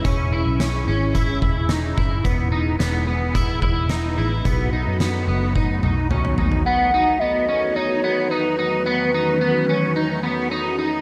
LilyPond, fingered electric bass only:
\new Staff \with { instrumentName = "Fingered electric bass" } { \clef bass \time 4/4 \key b \mixolydian \tempo 4 = 109 e,,8. b,,8. gis,,4 e,,4 fis,,8 | e,,4 e,,4. e,,4 a,,8 | b,,8. fis,8. fis,,4 b,,4 dis,8 | r1 |
r1 | }